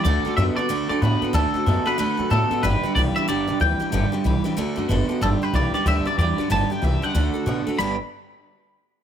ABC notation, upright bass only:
X:1
M:4/4
L:1/8
Q:"Swing" 1/4=186
K:G
V:1 name="Upright bass" clef=bass
D,, z F,, z D,, F,, A,, z | D,, z F,, z D,, F,, A,, z | G,,, z B,,, z G,,, B,,, D,, z | G,,, z B,,, z D,, F,, F,,, z |
G,,, z B,,, z D,, z E,, z | G,,, z C,, z D,, z B,, z | G,,, z6 z |]